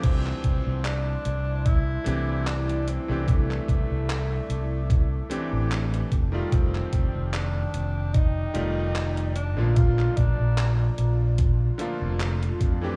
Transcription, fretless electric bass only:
X:1
M:4/4
L:1/16
Q:"Swing 16ths" 1/4=74
K:Cmix
V:1 name="Fretless electric bass" clef=bass
C,, z C,, C,,2 z C,,3 z C,,4 z C,,- | C,, z C,, C,,2 z C,,3 z2 A,,,2 z F,,, z | F,,, z F,,, F,,,2 z F,,,3 z F,,,4- F,,, B,,,- | B,,, z B,,, B,,,2 z B,,,3 z2 F,,,2 z F,, z |]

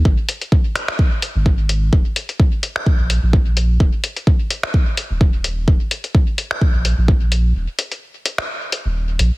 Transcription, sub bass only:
X:1
M:4/4
L:1/16
Q:"Swing 16ths" 1/4=128
K:D#m
V:1 name="Sub bass" clef=bass
G,,, z8 z2 G,,,4- G,,, | D,,, z8 A,,,2 A,,,4- A,,, | D,,, z8 z2 D,,,4- D,,, | D,,, z8 A,,,2 A,,,4- A,,, |
D,,, z8 z2 D,,,3 A,,, z |]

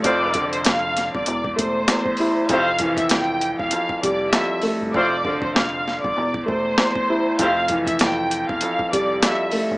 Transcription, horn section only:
X:1
M:4/4
L:1/16
Q:"Swing 16ths" 1/4=98
K:F
V:1 name="Horn section"
[A,CFc]3 z12 z | [A,CGc]2 z12 z2 | [A,CFc]2 z12 z2 | [A,CGc]2 z12 z2 |]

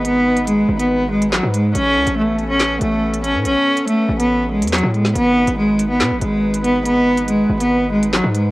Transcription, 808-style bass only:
X:1
M:4/4
L:1/16
Q:1/4=141
K:G#phr
V:1 name="808-style bass" clef=bass
G,,,6 G,,,6- G,,, G,,3 | A,,,2 C,, A,,,6- A,,, A,,,4- A,,, A,, | A,,, z4 z A,,,4- A,,, E,,2 A,,3 | G,,,3 G,,,4- G,,, B,, G,,, G,,,6- |
G,,,6 G,,,6- G,,, G,,3 |]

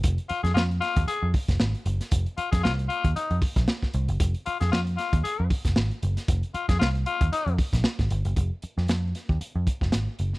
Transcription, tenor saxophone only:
X:1
M:4/4
L:1/16
Q:"Swing 16ths" 1/4=115
K:Fm
V:1 name="Tenor saxophone"
z2 F A F z F2 A2 z6 | z2 F A F z F2 E2 z6 | z2 F A F z F2 A2 z6 | z2 F A F z F2 E2 z6 |
z16 |]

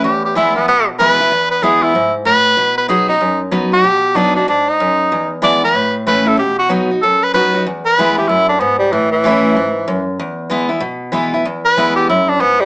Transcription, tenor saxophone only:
X:1
M:4/4
L:1/8
Q:"Swing" 1/4=189
K:E
V:1 name="Tenor saxophone"
=G G E B, B, z B2- | B B G E2 z B2- | B B G D2 z2 =G- | =G2 =D D D ^D3- |
D z =d B2 z B A | =G F z2 A B B2 | z B2 =G E =D B, =G, | E, E,6 z |
z8 | z B2 =G E =D B, =G, |]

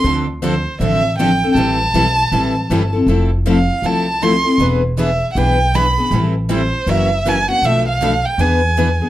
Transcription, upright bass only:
X:1
M:4/4
L:1/8
Q:"Swing" 1/4=158
K:Am
V:1 name="Upright bass" clef=bass
D,,4 A,,,4 | A,,,2 B,,,2 A,,,2 G,,,2 | F,,,4 C,,4 | E,,,4 B,,,4 |
A,,,4 ^F,,,4 | B,,,4 E,,4 |]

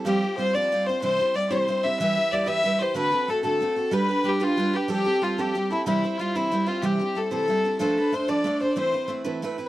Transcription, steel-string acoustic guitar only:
X:1
M:12/8
L:1/8
Q:3/8=124
K:Flyd
V:1 name="Steel-string acoustic guitar"
[F,G,CFc] [CFc] [G,CFc] [F,G,CFc] [G,CFc] [CFc] [C,E,G,CEc] [G,CEc] [G,CEc] [C,E,G,CEc] [G,CEc] [G,CEc] | [E,G,EGB] [EGB] [G,EGB] [E,G,EGB] [G,EGB] [EGB] [D,A,C^FA] [CFA] [A,CFA] [D,A,CFA] [A,CFA] [CFA] | [G,DGB] [DGB] [G,DGB] [G,DGB] [G,DGB] [DGB] [F,G,CGA] [CGA] [G,CGA] [F,G,CGA] [G,CGA] [CGA] | [C,E,G,CEc] [G,CEc] [G,CEc] [C,E,G,CEc] [G,CEc] [G,CEc] [C,E,G,CEc] [G,CEc] [G,CEc] [C,E,G,CEc] [G,CEc] [G,CEc] |
[F,A,DAc] [DAc] [A,DAc] [F,A,DAc] [A,DAc] [DAc] [E,A,CEB] [CEB] [A,CEB] [E,A,CEB] [A,CEB] [CEB] |]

